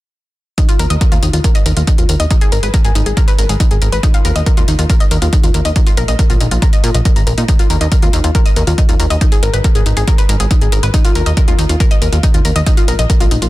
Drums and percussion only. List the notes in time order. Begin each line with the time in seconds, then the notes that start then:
0.58 kick, closed hi-hat
0.69 closed hi-hat
0.79 closed hi-hat
0.90 closed hi-hat
1.01 kick, closed hi-hat
1.12 closed hi-hat
1.23 closed hi-hat
1.33 closed hi-hat
1.44 kick, closed hi-hat
1.55 closed hi-hat
1.66 closed hi-hat
1.77 closed hi-hat
1.87 kick, closed hi-hat
1.98 closed hi-hat
2.09 closed hi-hat
2.20 closed hi-hat
2.31 kick, closed hi-hat
2.41 closed hi-hat
2.52 closed hi-hat
2.63 closed hi-hat
2.74 kick, closed hi-hat
2.85 closed hi-hat
2.95 closed hi-hat
3.06 closed hi-hat
3.17 kick, closed hi-hat
3.28 closed hi-hat
3.39 closed hi-hat
3.49 closed hi-hat
3.60 kick, closed hi-hat
3.71 closed hi-hat
3.82 closed hi-hat
3.92 closed hi-hat
4.03 kick, closed hi-hat
4.14 closed hi-hat
4.25 closed hi-hat
4.36 closed hi-hat
4.46 kick, closed hi-hat
4.57 closed hi-hat
4.68 closed hi-hat
4.79 closed hi-hat
4.90 kick, closed hi-hat
5.00 closed hi-hat
5.11 closed hi-hat
5.22 closed hi-hat
5.33 kick, closed hi-hat
5.43 closed hi-hat
5.54 closed hi-hat
5.65 closed hi-hat
5.76 kick, closed hi-hat
5.87 closed hi-hat
5.97 closed hi-hat
6.08 closed hi-hat
6.19 kick, closed hi-hat
6.30 closed hi-hat
6.41 closed hi-hat
6.51 closed hi-hat
6.62 kick, closed hi-hat
6.73 closed hi-hat
6.84 closed hi-hat
6.95 closed hi-hat
7.05 kick, closed hi-hat
7.16 closed hi-hat
7.27 closed hi-hat
7.38 closed hi-hat
7.48 kick, closed hi-hat
7.59 closed hi-hat
7.70 closed hi-hat
7.81 closed hi-hat
7.92 kick, closed hi-hat
8.02 closed hi-hat
8.13 closed hi-hat
8.24 closed hi-hat
8.35 kick, closed hi-hat
8.46 closed hi-hat
8.56 closed hi-hat
8.67 closed hi-hat
8.78 kick, closed hi-hat
8.89 closed hi-hat
9.00 closed hi-hat
9.10 closed hi-hat
9.21 kick, closed hi-hat
9.32 closed hi-hat
9.43 closed hi-hat
9.54 closed hi-hat
9.64 kick, closed hi-hat
9.75 closed hi-hat
9.86 closed hi-hat
9.97 closed hi-hat
10.08 kick, closed hi-hat
10.18 closed hi-hat
10.29 closed hi-hat
10.40 closed hi-hat
10.51 kick, closed hi-hat
10.61 closed hi-hat
10.72 closed hi-hat
10.83 closed hi-hat
10.94 kick, closed hi-hat
11.05 closed hi-hat
11.15 closed hi-hat
11.26 closed hi-hat
11.37 kick, closed hi-hat
11.48 closed hi-hat
11.59 closed hi-hat
11.69 closed hi-hat
11.80 kick, closed hi-hat
11.91 closed hi-hat
12.02 closed hi-hat
12.13 closed hi-hat
12.23 kick, closed hi-hat
12.34 closed hi-hat
12.45 closed hi-hat
12.56 closed hi-hat
12.66 kick, closed hi-hat
12.77 closed hi-hat
12.88 closed hi-hat
12.99 closed hi-hat
13.10 kick, closed hi-hat
13.20 closed hi-hat
13.31 closed hi-hat
13.42 closed hi-hat